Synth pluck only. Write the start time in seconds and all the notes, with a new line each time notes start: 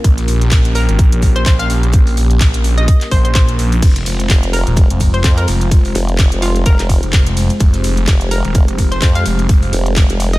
0.75 A#4
1.36 C5
1.46 C5
1.59 F5
2.78 D#5
3.11 C5
3.25 C5
3.35 C5
4.53 A#4
5.14 C5
5.24 C5
5.37 A#4
6.42 F4
6.66 A#4
8.31 A#4
8.92 C5
9.02 C5
9.15 F5
10.33 D#5